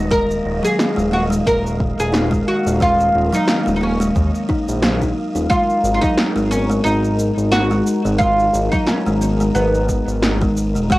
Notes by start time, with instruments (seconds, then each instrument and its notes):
Already playing: analog synth bass D#1, synth texture D#5
0.11 analog synth pad D#3 A#3 F5, kalimba G#3, oud A#4, kick, cabasa
0.31 cabasa
0.45 analog synth bass D#1
0.63 kalimba F#3, oud G#4, cabasa
0.79 snare, cabasa
0.96 analog synth bass D#1, kalimba G#3, cabasa
1.11 kalimba A#3, oud F#4
1.30 kalimba G#3, cabasa
1.47 analog synth bass D#1, oud A#4, kick, cabasa
1.66 cabasa
1.80 kick
1.99 analog synth bass D#1, oud G#4, cabasa
2.12 kalimba D#4, snare, cabasa
2.31 kalimba G#3, kick, cabasa
2.48 oud F#4
2.65 analog synth bass D#1, kalimba G#3, cabasa
2.80 kalimba G#3, oud F4, kick, cabasa
3.00 cabasa
3.15 analog synth bass D#1
3.33 kalimba F#3, oud D#4, cabasa
3.48 snare, cabasa
3.66 analog synth bass D#1, kalimba G#3, cabasa
3.76 oud D#4
3.81 kalimba A#3, oud C#4
4.00 kalimba G#3, cabasa
4.16 analog synth bass D#2, kick, cabasa
4.35 cabasa
4.49 kalimba D#4, kick
4.68 analog synth bass A#1, cabasa
4.82 kalimba F#3, snare, cabasa
5.02 kalimba D#4, kick, cabasa
5.35 analog synth bass D#1, kalimba D#4, cabasa
5.50 kalimba G#3, analog synth pad G#3 D#4 A#4, oud F4, kick, cabasa
5.70 cabasa
5.83 analog synth bass G#1, cabasa
5.94 oud F4
6.02 kalimba F#3, oud D#4, kick, cabasa
6.18 snare, cabasa
6.36 analog synth bass G#1, kalimba G#3, cabasa
6.51 kalimba B3, oud C#4, cabasa
6.70 kalimba G#3, cabasa
6.84 analog synth bass G#1, oud D#4, cabasa
7.04 cabasa
7.19 cabasa
7.37 analog synth bass G#1, cabasa
7.52 kalimba D#4, oud F#4, snare, cabasa
7.71 kalimba G#3, cabasa
7.87 cabasa
8.05 analog synth bass G#1, kalimba G#3, cabasa
8.18 kalimba G#3, oud F4, kick, cabasa
8.39 cabasa
8.53 analog synth bass G#1, cabasa
8.72 kalimba F#3, oud D#4, kick, cabasa
8.87 oud C#4, snare, cabasa
9.06 analog synth bass G#1, kalimba G#3, cabasa
9.21 kalimba B3, cabasa
9.40 kalimba G#3, cabasa
9.55 analog synth bass G#1, oud B3, cabasa
9.75 cabasa
9.89 kick, cabasa
10.07 analog synth bass G#1, cabasa
10.23 kalimba D#4, snare, cabasa
10.41 kalimba G#3, kick, cabasa
10.57 cabasa
10.75 analog synth bass D#1, kalimba G#3, cabasa
10.89 analog synth pad D#3 A#3 F5, kalimba G#3, oud F#4, kick, cabasa